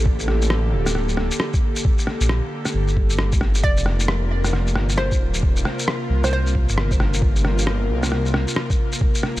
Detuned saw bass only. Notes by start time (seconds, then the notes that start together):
Already playing: A1
0.73 D1
2.21 A#1
2.74 G1
3.41 G1
3.64 F1
4.75 G1
5.20 D#1
6.10 C2
6.68 G1
7.89 C2